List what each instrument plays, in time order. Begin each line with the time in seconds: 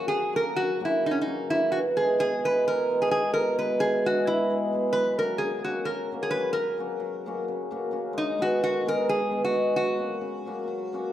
Already playing: hammered dulcimer F#3
0.08 hammered dulcimer C#3, resonator guitar played with a steel bar G#4
0.33 hammered dulcimer F#3 A#3 C#4 F#4, resonator guitar played with a steel bar A#4
0.55 hammered dulcimer F#3, resonator guitar played with a steel bar F#4
0.80 hammered dulcimer F#3 A#3 C#4 F#4
0.85 resonator guitar played with a steel bar E4
1.03 hammered dulcimer C#3, resonator guitar played with a steel bar D#4
1.11 resonator guitar played with a steel bar C#4
1.21 resonator guitar played with a steel bar D#4
1.26 hammered dulcimer F#3 A#3 C#4 F#4
1.50 hammered dulcimer F#3 A#3 C#4 F#4, resonator guitar played with a steel bar E4
1.72 hammered dulcimer E3, resonator guitar played with a steel bar F#4
1.97 hammered dulcimer G#3 B3 E4 G#4, resonator guitar played with a steel bar G#4
2.19 hammered dulcimer B2, resonator guitar played with a steel bar G#4
2.44 hammered dulcimer G#3 B3 E4 G#4, resonator guitar played with a steel bar B4
2.65 hammered dulcimer E3, resonator guitar played with a steel bar A#4
2.90 hammered dulcimer G#3 B3 E4 G#4
3.02 resonator guitar played with a steel bar G#4
3.10 hammered dulcimer G#3 B3 E4 G#4, resonator guitar played with a steel bar G#4
3.32 hammered dulcimer B2, resonator guitar played with a steel bar A#4
3.57 hammered dulcimer G#3 B3 E4 G#4, resonator guitar played with a steel bar B4
3.79 hammered dulcimer E3, resonator guitar played with a steel bar G#4
4.05 hammered dulcimer G#3 B3 E4 G#4, resonator guitar played with a steel bar F#4
4.26 hammered dulcimer B2, resonator guitar played with a steel bar E4
4.50 hammered dulcimer G#3 B3 E4 G#4
4.73 hammered dulcimer G#3 B3 E4 G#4
4.93 hammered dulcimer F#3, resonator guitar played with a steel bar B4
5.18 hammered dulcimer F#3 A#3 C#4 F#4, resonator guitar played with a steel bar A#4
5.38 hammered dulcimer C#3, resonator guitar played with a steel bar G#4
5.64 hammered dulcimer F#3 A#3 C#4 F#4, resonator guitar played with a steel bar F#4
5.85 hammered dulcimer F#3, resonator guitar played with a steel bar A#4
6.12 hammered dulcimer F#3 A#3 C#4 F#4
6.23 resonator guitar played with a steel bar G#4
6.31 hammered dulcimer F#3 A#3 C#4 F#4, resonator guitar played with a steel bar B4
6.53 hammered dulcimer C#3, resonator guitar played with a steel bar A#4
6.78 hammered dulcimer F#3 A#3 C#4 F#4
7.00 hammered dulcimer F#3
7.26 hammered dulcimer F#3 A#3 C#4 F#4
7.48 hammered dulcimer C#3
7.71 hammered dulcimer F#3 A#3 C#4 F#4
7.91 hammered dulcimer F#3 A#3 C#4 F#4
8.13 hammered dulcimer G#3
8.18 resonator guitar played with a steel bar D#4
8.38 hammered dulcimer G#3 B3 D#4 G#4, resonator guitar played with a steel bar F#4
8.61 hammered dulcimer D#3, resonator guitar played with a steel bar F#4
8.86 hammered dulcimer G#3 B3 D#4 G#4, resonator guitar played with a steel bar A#4
9.08 hammered dulcimer G#3, resonator guitar played with a steel bar G#4
9.31 hammered dulcimer G#3 B3 D#4 G#4
9.44 resonator guitar played with a steel bar F#4
9.52 hammered dulcimer G#3 B3 D#4 G#4
9.73 hammered dulcimer F#3, resonator guitar played with a steel bar F#4
9.98 hammered dulcimer F#3 A#3 C#4 F#4
10.21 hammered dulcimer C#3
10.46 hammered dulcimer F#3 A#3 C#4 F#4
10.68 hammered dulcimer F#3
10.92 hammered dulcimer F#3 A#3 C#4 F#4